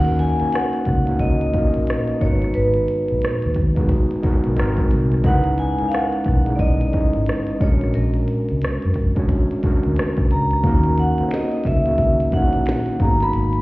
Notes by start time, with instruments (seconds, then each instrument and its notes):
Already playing: fingered electric bass D#2, tine electric piano A#3 C#4 D#4 F#4 G#4 A#4 D5, vibraphone F#5
0.05 closed hi-hat
0.19 vibraphone G#5, closed hi-hat
0.38 tine electric piano A#3 C#4 D#4 F#4, closed hi-hat
0.42 tine electric piano C#5, muted fingered electric bass stroke
0.53 vibraphone F#5, cross-stick, closed hi-hat
0.73 closed hi-hat
0.85 fingered electric bass C#2, kick, cross-stick, closed hi-hat
1.06 tine electric piano A#3 C#4 D#4 F#4, closed hi-hat
1.10 tine electric piano C#5
1.19 fingered electric bass C#2, vibraphone D#5, kick, closed hi-hat
1.41 closed hi-hat
1.52 tine electric piano A#3 C#4 D#4 F4, kick, closed hi-hat
1.57 tine electric piano A#4
1.62 tine electric piano F#4
1.74 fingered electric bass A#1, closed hi-hat
1.87 cross-stick, closed hi-hat
2.08 closed hi-hat
2.20 fingered electric bass G#1, tine electric piano G#3 A#3 D#4 F#4, vibraphone C#5, kick, closed hi-hat
2.24 tine electric piano B3 B4
2.42 cross-stick, closed hi-hat
2.54 fingered electric bass G#1, vibraphone B4, closed hi-hat
2.74 closed hi-hat
2.88 closed hi-hat
3.08 fingered electric bass A#1, closed hi-hat
3.22 cross-stick, closed hi-hat
3.42 fingered electric bass D#2, closed hi-hat
3.55 kick, closed hi-hat
3.75 tine electric piano G#3 B3 D#4 F#4, kick, closed hi-hat
3.80 tine electric piano G#4
3.89 kick, closed hi-hat
4.11 closed hi-hat
4.22 tine electric piano G#3 B3 D#4 F#4, muted fingered electric bass stroke, kick, closed hi-hat
4.27 tine electric piano A#4
4.44 fingered electric bass B1, closed hi-hat
4.56 tine electric piano G#3 C4 D#4 F#4, cross-stick, closed hi-hat
4.60 fingered electric bass G#1, tine electric piano A#4
4.77 fingered electric bass A#1, kick, closed hi-hat
4.91 fingered electric bass C2, closed hi-hat
5.12 cross-stick, closed hi-hat
5.24 fingered electric bass C#2, tine electric piano G#3 C#4 D#4 E4, vibraphone F#5, kick, closed hi-hat
5.28 tine electric piano B4
5.44 closed hi-hat
5.58 vibraphone G#5, closed hi-hat
5.78 tine electric piano G#3 C#4 D#4 E4, muted fingered electric bass stroke, closed hi-hat
5.83 tine electric piano A#4
5.88 vibraphone F5, closed hi-hat
5.93 vibraphone F#5, cross-stick
6.12 closed hi-hat
6.25 fingered electric bass B1, kick, cross-stick, closed hi-hat
6.45 tine electric piano G#3 C#4 D#4 E4, closed hi-hat
6.50 tine electric piano G#4
6.56 vibraphone D5 D#5, kick, closed hi-hat
6.60 fingered electric bass B1
6.81 closed hi-hat
6.92 tine electric piano G#3 C#4 D#4 E4, kick, closed hi-hat
6.97 tine electric piano G#4
7.13 fingered electric bass G#1, closed hi-hat
7.26 cross-stick, closed hi-hat
7.47 closed hi-hat
7.59 fingered electric bass A#1, tine electric piano G#3 C#4 D4 F#4, vibraphone C#5, kick, closed hi-hat
7.64 tine electric piano A#4
7.81 cross-stick, closed hi-hat
7.94 fingered electric bass A#1, vibraphone A#4, closed hi-hat
8.14 closed hi-hat
8.28 closed hi-hat
8.49 fingered electric bass C#2, closed hi-hat
8.62 muted fingered electric bass stroke, cross-stick, closed hi-hat
8.82 fingered electric bass F#2, closed hi-hat
8.94 kick, closed hi-hat
9.15 tine electric piano G#3 C#4 D4 F#4, kick, closed hi-hat
9.20 tine electric piano C#5
9.29 kick, closed hi-hat
9.51 closed hi-hat
9.62 tine electric piano G#3 C#4 D4 F#4, muted fingered electric bass stroke, kick, closed hi-hat
9.67 tine electric piano A#4
9.83 fingered electric bass D2, closed hi-hat
9.96 cross-stick, closed hi-hat
10.17 fingered electric bass B1, kick, closed hi-hat
10.31 fingered electric bass C#2, vibraphone A#5, closed hi-hat
10.51 cross-stick, closed hi-hat
10.63 fingered electric bass D#2, tine electric piano A#3 C#4 D#4 F#4, kick, closed hi-hat, shaker
10.68 tine electric piano A#4
10.83 closed hi-hat, shaker
10.98 vibraphone F#5, closed hi-hat
11.17 tine electric piano A#3 C#4 D#4 F#4, muted fingered electric bass stroke, closed hi-hat, shaker
11.22 tine electric piano C5
11.28 tine electric piano C#5, finger snap, closed hi-hat, shaker
11.32 vibraphone D#5, snare
11.52 closed hi-hat, shaker
11.64 fingered electric bass C#2, vibraphone E5, kick, snare, closed hi-hat, shaker
11.85 tine electric piano D#3 A#3 C#4 F#4, closed hi-hat, shaker
11.90 tine electric piano G#4
11.98 fingered electric bass C#2, kick, closed hi-hat, shaker
12.20 closed hi-hat, shaker
12.31 tine electric piano A#3 C#4 D#4, vibraphone F#5, kick, closed hi-hat, shaker
12.36 tine electric piano E4 C#5
12.42 tine electric piano F#4
12.52 fingered electric bass A#1, closed hi-hat, shaker
12.66 finger snap, snare, closed hi-hat, shaker
12.86 closed hi-hat, shaker
12.99 fingered electric bass G#1, tine electric piano A#3 B3 D#4 F#4, vibraphone A#5, kick, closed hi-hat, shaker
13.04 tine electric piano G#4
13.21 vibraphone B5, snare, closed hi-hat, shaker
13.33 fingered electric bass G#1, closed hi-hat, shaker
13.53 closed hi-hat, shaker